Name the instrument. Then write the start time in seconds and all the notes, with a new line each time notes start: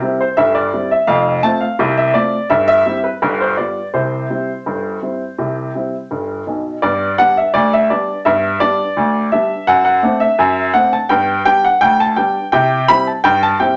upright piano
Already playing: A#4
0.02 G3 C4 E4
0.21 C5
0.37 G1 G2 E5
0.55 D5
0.73 G3 C4 E4
0.91 E5
1.07 F1 F2 F5
1.43 A3 C4 F4 A5
1.61 F5
1.79 C2 C3
1.97 E5
2.14 A3 C4 F4 D5
2.50 G1 G2 E5
2.68 E5
2.86 G3 C4 E4
3.04 B4
3.22 G1 G2
3.41 C5
3.57 G3 B3 F4 D5
3.94 C2 C3 C5
4.30 G3 C4 E4
4.66 G1 G2
5.02 G3 C4 E4
5.38 C2 C3
5.75 G3 C4 E4
6.11 G1 G2
6.47 B1 B2
6.82 G2 B3 D5
7.18 G3 B3 D4 F#5
7.37 E5
7.54 D2 D5
7.73 E5
7.90 G3 B3 D4 D5
8.25 G2 B3 E5
8.60 G3 B3 D4 D5
8.97 D2
9.32 G3 B3 D4 E5
9.67 F#2 F#5
9.85 F#5
10.03 A3 C4 D4
10.20 E5
10.39 F#2
10.74 A3 C4 D4 F#5
10.93 A5
11.09 G2 B3 G5
11.45 G3 B3 D4 G5
11.64 F#5
11.81 D2 G5
12.00 A5
12.16 G3 B3 D4 G5
12.52 C3 E4 G5
12.88 G3 C4 E4 B5
13.07 A5
13.24 G2 G5
13.43 A5
13.60 G3 C4 E4 G5